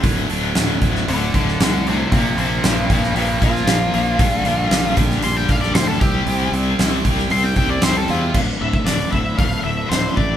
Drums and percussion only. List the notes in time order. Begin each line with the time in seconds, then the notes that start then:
0.03 kick, open hi-hat
0.30 open hi-hat
0.55 snare, open hi-hat
0.82 kick, open hi-hat
0.95 snare
1.08 open hi-hat
1.34 kick, open hi-hat
1.48 snare
1.60 snare, open hi-hat
1.87 open hi-hat
2.12 kick, open hi-hat
2.38 open hi-hat
2.64 snare, open hi-hat
2.90 kick, open hi-hat
3.04 snare
3.16 open hi-hat
3.42 kick, open hi-hat
3.55 snare
3.67 snare, open hi-hat
3.94 open hi-hat
4.19 kick, open hi-hat
4.45 open hi-hat
4.71 snare, open hi-hat
4.97 kick, open hi-hat
5.11 snare
5.22 open hi-hat
5.49 kick, open hi-hat
5.63 snare
5.75 snare, open hi-hat
6.01 kick, open hi-hat
6.27 open hi-hat
6.53 open hi-hat
6.79 snare, open hi-hat
7.05 kick, open hi-hat
7.18 snare
7.30 open hi-hat
7.56 kick, open hi-hat
7.82 snare, open hi-hat
8.08 open hi-hat
8.34 kick, crash
8.73 kick
8.86 snare, open hi-hat
9.00 snare
9.13 kick
9.38 kick, open hi-hat
9.91 snare, open hi-hat
10.17 kick